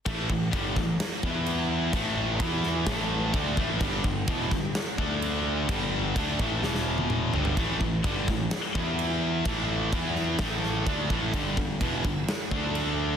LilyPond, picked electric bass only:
\new Staff \with { instrumentName = "Picked electric bass" } { \clef bass \time 4/4 \key g \lydian \tempo 4 = 128 a,,8 a,,8 g,,8 a,,8 r8 e,4. | a,,4 e,4 a,,4 d,8 a,,8 | g,,8 g,,8 e,,8 g,,8 r8 d,4. | g,,4 d,8 a,,8 e,,4. g,,8 |
a,,8 a,,8 g,,8 a,,8 r8 e,4. | a,,4 e,4 a,,4 d,8 a,,8 | g,,8 g,,8 e,,8 g,,8 r8 d,4. | }